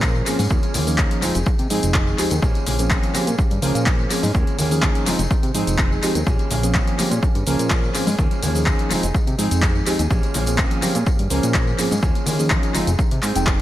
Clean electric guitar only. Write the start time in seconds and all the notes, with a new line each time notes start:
0.02 F3 A#3 C#4 G#4
0.15 A#3 C#4 G#4
0.26 F3 A#3 C#4 G#4
0.38 A#3 C#4 G#4
0.50 F3 A#3 C#4 G#4
0.74 F3 A#3 C#4 G#4
0.99 C#4 G#4
1.22 C4 D#4 G#4
1.34 D#4 G#4
1.70 C4 D#4 G#4
1.95 G#4
2.06 D#4 G#4
2.18 C4 D#4 G#4
2.30 D#4 G#4
2.42 F3 A#3 C#4 G#4
2.66 F3 A#3 C#4 G#4
2.90 F3 A#3 C#4 G#4
3.14 F3 A#3 C#4 G#4
3.26 A#3 C#4 G#4
3.61 F3 A#3 C#4 G#4
3.86 F3 G#4
3.98 A#3 C#4 G#4
4.09 F3 A#3 C#4 G#4
4.22 A#3 C#4 G#4
4.34 F3 A#3 C#4 G#4
4.58 F3 A#3 C#4 G#4
4.82 A#3 G#4
5.06 F3 C4 D#4 G#4
5.18 C4 D#4 G#4
5.54 F3 C4 D#4 G#4
5.78 F3 C4 D#4 G#4
5.91 C4 D#4 G#4
6.02 F3 C4 D#4 G#4
6.15 C4 D#4 G#4
6.26 F3 A#3 C#4 G#4
6.50 F3 A#3 C#4 G#4
6.74 F3 A#3 C#4
6.98 F3 A#3 C#4 G#4
7.11 A#3 C#4 G#4
7.46 F3 A#3 C#4 G#4
7.70 F3 A#3 C#4 G#4
7.83 A#3 C#4 G#4
7.94 F3 A#3 C#4 G#4
8.07 A#3 C#4 G#4
8.18 F3 A#3 C#4 G#4
8.42 F3 A#3 C#4 G#4
8.66 F3 A#3 C#4 G#4
8.90 C4 D#4 G#4
9.03 D#4 G#4
9.38 C4 D#4 G#4
9.64 G#4
9.75 D#4 G#4
9.86 C4 D#4 G#4
9.99 D#4 G#4
10.10 F3 A#3 C#4 G#4
10.34 F3 A#3 C#4 G#4
10.59 A#3 C#4 G#4
10.82 F3 A#3 C#4 G#4
10.95 A#3 C#4 G#4
11.30 F3 A#3 C#4 G#4
11.54 F3 A#3 C#4 G#4
11.67 A#3 C#4 G#4
11.78 F3 A#3 C#4 G#4
11.91 A#3 C#4 G#4
12.02 F3 A#3 C#4 G#4
12.26 F3 A#3 C#4 G#4
12.52 G#4
12.74 C4 D#4 G#4
12.87 D#4 G#4
13.22 C4 D#4 G#4
13.47 C4 D#4 G#4